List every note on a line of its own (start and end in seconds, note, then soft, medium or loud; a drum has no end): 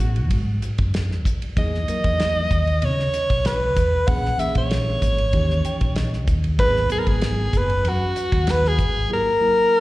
0.00 0.31 A1 medium
0.00 0.17 F#3 medium
0.00 0.17 B3 medium
0.00 0.17 D#4 medium
0.00 0.62 F#4 medium
0.00 0.18 G#4 medium
0.16 ride soft
0.30 0.58 G#2 medium
0.30 kick medium
0.30 ride medium
0.62 hi-hat pedal medium
0.62 ride medium
0.78 1.25 F#2 medium
0.78 kick medium
0.78 ride soft
0.94 snare medium
0.94 ride medium
1.11 snare soft
1.25 1.53 B1 medium
1.25 kick medium
1.25 hi-hat pedal medium
1.25 ride soft
1.42 ride medium
1.56 1.84 E2 medium
1.56 1.77 F#3 medium
1.56 1.77 A#3 medium
1.56 1.77 D#4 medium
1.56 1.78 G#4 medium
1.56 2.86 D#5 medium
1.56 kick loud
1.56 ride medium
1.74 snare soft
1.88 2.68 F#3 medium
1.88 2.69 A#3 medium
1.88 2.69 D#4 medium
1.88 2.69 A#4 medium
1.88 muted fretless electric bass stroke soft
1.88 hi-hat pedal medium
1.88 ride medium
2.04 2.45 E2 medium
2.04 kick medium
2.04 ride medium
2.20 snare medium
2.20 ride medium
2.51 2.84 D#2 medium
2.51 kick medium
2.51 hi-hat pedal medium
2.51 ride medium
2.67 ride soft
2.82 3.10 C#3 medium
2.82 3.48 C#5 medium
2.82 ride medium
2.99 snare soft
3.13 hi-hat pedal medium
3.13 ride medium
3.30 3.76 B1 medium
3.30 kick medium
3.30 ride medium
3.45 4.09 B4 medium
3.45 snare medium
3.45 ride medium
3.76 4.04 E2 medium
3.76 kick medium
3.76 hi-hat pedal medium
3.76 ride medium
4.07 4.35 A#1 medium
4.07 4.28 E3 medium
4.07 4.28 A#3 medium
4.07 4.28 C#4 medium
4.07 4.29 G#4 medium
4.07 4.41 F#5 loud
4.07 kick loud
4.07 ride medium
4.25 snare soft
4.38 5.19 E3 medium
4.38 5.19 A#3 medium
4.38 5.20 C#4 medium
4.38 5.20 G#4 medium
4.38 4.55 E5 medium
4.38 muted fretless electric bass stroke soft
4.38 hi-hat pedal medium
4.38 ride medium
4.55 4.96 A#1 medium
4.55 6.24 C#5 medium
4.55 kick medium
4.55 ride medium
4.71 snare loud
4.71 ride medium
5.02 5.35 G#1 medium
5.02 kick medium
5.02 hi-hat pedal medium
5.02 ride medium
5.18 ride soft
5.33 5.61 D#2 medium
5.33 6.34 E3 medium
5.33 6.34 C#4 medium
5.33 6.34 D#4 medium
5.33 6.35 G4 medium
5.33 kick medium
5.33 ride medium
5.50 snare soft
5.65 5.94 G5 medium
5.65 hi-hat pedal medium
5.65 ride medium
5.81 6.28 A#1 medium
5.81 kick medium
5.81 ride medium
5.96 6.55 D#5 medium
5.96 snare medium
5.96 ride medium
6.13 snare soft
6.27 6.55 D#2 medium
6.27 kick medium
6.27 hi-hat pedal medium
6.27 ride medium
6.44 ride medium
6.58 6.86 G#1 medium
6.58 6.79 F#3 medium
6.58 6.79 B3 medium
6.58 6.80 D#4 medium
6.58 6.80 G#4 medium
6.58 6.88 B4 loud
6.58 kick loud
6.58 ride medium
6.76 snare soft
6.89 7.70 F#3 medium
6.89 7.70 B3 medium
6.89 7.70 D#4 medium
6.89 7.00 G#4 medium
6.89 7.71 A#4 medium
6.89 hi-hat pedal medium
6.89 ride medium
6.99 7.09 A#4 medium
7.07 7.48 G#1 loud
7.07 7.59 G#4 medium
7.07 kick medium
7.07 ride medium
7.21 snare loud
7.21 ride medium
7.53 7.86 F#1 medium
7.53 kick medium
7.53 hi-hat pedal medium
7.53 ride medium
7.57 7.90 B4 medium
7.70 ride soft
7.85 8.12 F#2 medium
7.85 8.52 F#4 medium
7.85 ride medium
8.16 hi-hat pedal medium
8.16 ride medium
8.32 8.80 D#2 medium
8.32 kick medium
8.32 ride medium
8.47 snare medium
8.47 ride medium
8.51 8.69 B4 medium
8.65 9.12 G#4 medium
8.65 snare soft
8.78 9.06 G#1 medium
8.78 kick medium
8.78 hi-hat pedal medium
8.78 ride medium
9.09 9.30 F#3 medium
9.09 9.30 A#3 medium
9.09 9.30 E4 medium
9.09 9.31 G4 medium
9.13 9.80 A#4 loud
9.40 9.80 F#3 medium
9.40 9.80 A#3 medium
9.40 9.80 E4 medium
9.40 9.80 A#4 medium